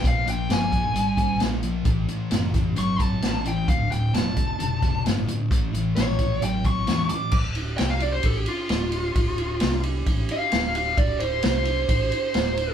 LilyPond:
<<
  \new Staff \with { instrumentName = "Lead electric guitar" } { \time 4/4 \key d \minor \tempo 4 = 132 f''8 g''8 gis''2 r4 | r2 cis'''8 a''4 g''8 | f''8 g''8 a''2 r4 | r4 cis''4 g''8 cis'''4 d'''8 |
r4 g''16 f''16 d''16 c''16 a'16 g'16 f'4.~ | f'4. r4 f''4 f''8 | d''8 c''8 c''2. | }
  \new Staff \with { instrumentName = "Distorted electric guitar" } { \clef bass \time 4/4 \key d \minor <bes, f>8 <bes, f>8 <bes, f>8 <bes, f>8 <bes, g>8 <bes, g>8 <bes, f>8 <bes, f>8 | <a, e>8 <a, e>8 <a, e>8 <a, e>8 <a, fis>8 <a, fis>8 <a, e>8 <a, e>8 | <d, a,>8 <d, a,>8 <d, a,>8 <d, a,>8 <d, b,>8 <d, b,>8 <d, a,>8 <d, a,>8 | <a, e>8 <a, e>8 <a, e>8 <a, e>8 <a, fis>8 <a, fis>8 <a, e>8 <a, e>8 |
r1 | r1 | r1 | }
  \new Staff \with { instrumentName = "Fingered electric bass" } { \clef bass \time 4/4 \key d \minor bes,,4 g,,4 gis,,4 bes,,4 | a,,8 r8 fis,,4 g,,4 a,,4 | d,,4 e,,4 f,,4 g,,8 r8 | a,,4 bes,,4 a,,4 e,8 r8 |
d,,4 c,4 a,,8 r8 d,,4 | d,,4 c,4 a,,8 r8 d,,4 | d,,4 c,4 a,,8 r8 d,,4 | }
  \new DrumStaff \with { instrumentName = "Drums" } \drummode { \time 4/4 <hh bd>8 hh8 <hh sn>8 <hh bd>8 hh8 <hh bd>8 <hh sn>8 hh8 | <hh bd>8 hh8 <hh sn>8 <hh bd>8 hh8 <hh bd>8 <hh sn>8 hh8 | <hh bd>8 hh8 <hh sn>8 <hh bd>8 hh8 <hh bd>8 <hh sn>8 hh8 | <hh bd>8 hh8 <hh sn>8 <hh bd>8 hh8 <hh bd>8 <hh sn>8 hh8 |
<cymc bd>8 cymr8 <cymr sn>8 cymr8 <bd cymr>8 cymr8 <cymr sn>8 cymr8 | <bd cymr>8 cymr8 <cymr sn>8 cymr8 <bd cymr>8 cymr8 <cymr sn>8 cymr8 | <bd cymr>8 cymr8 <cymr sn>8 cymr8 <bd cymr>8 cymr8 <cymr sn>8 cymr8 | }
>>